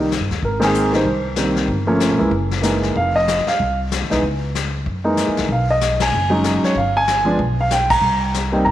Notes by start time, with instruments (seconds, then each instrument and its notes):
Already playing: upright bass C2
0.12 snare, hi-hat pedal
0.20 upright bass G2
0.30 upright bass D#2, snare
0.43 upright bass G#1, grand piano A#4, brush sweep, kick
0.60 grand piano D#3 G#3 A#3 C4, snare, ride
0.64 grand piano G#4
0.74 hi-hat pedal
0.93 grand piano D#3 G3 A#3 D#4 C5, snare
1.05 upright bass C2, brush sweep, kick
1.36 grand piano D#3 G3 A#3 C4, snare, hi-hat pedal
1.56 snare
1.68 upright bass G1, brush sweep, kick
1.87 grand piano F3 A3 A#3 C#4
2.00 snare, hi-hat pedal
2.09 upright bass A#1
2.18 upright bass C#2, grand piano E3 G#3 A#3 E4
2.31 upright bass F#1, brush sweep, kick
2.51 snare
2.62 grand piano E3 G#3 A#3 D#4, snare, hi-hat pedal
2.83 snare
2.95 upright bass F1, grand piano F5, brush sweep, kick
3.16 grand piano D#5
3.28 snare, hi-hat pedal
3.38 snare
3.45 grand piano F5, muted upright bass stroke, snare
3.49 snare
3.59 upright bass C2, brush sweep, kick
3.92 snare, hi-hat pedal
4.02 upright bass D#2
4.10 upright bass C2, grand piano E3 G#3 B3 D#4, snare
4.23 upright bass C#2, brush sweep, kick
4.55 snare, hi-hat pedal
4.86 upright bass F#2, brush sweep, kick
5.04 grand piano E3 G#3 A#3 D#4
5.17 snare, hi-hat pedal
5.28 upright bass E2
5.37 upright bass C2, snare
5.48 upright bass B1, brush sweep, kick
5.52 grand piano F5
5.71 grand piano D#5
5.81 snare, hi-hat pedal
6.00 grand piano G#5, snare, ride
6.12 upright bass F#1, brush sweep
6.30 grand piano F#3 G#3 C#4 D#4
6.44 snare, hi-hat pedal
6.63 grand piano C#5, muted upright bass stroke, snare
6.75 upright bass G1, grand piano F5, brush sweep, kick
6.97 grand piano G#5
7.08 snare, hi-hat pedal
7.25 grand piano F3 G#3 B3 D4
7.39 upright bass B1, brush sweep, kick
7.61 grand piano F5
7.71 grand piano G5, snare, hi-hat pedal
7.90 grand piano A#5, kick, crash
8.01 upright bass C2, brush sweep
8.34 snare, hi-hat pedal
8.52 grand piano G3 A#3 C4 D#4 G5
8.65 upright bass G1, grand piano A#5, brush sweep, kick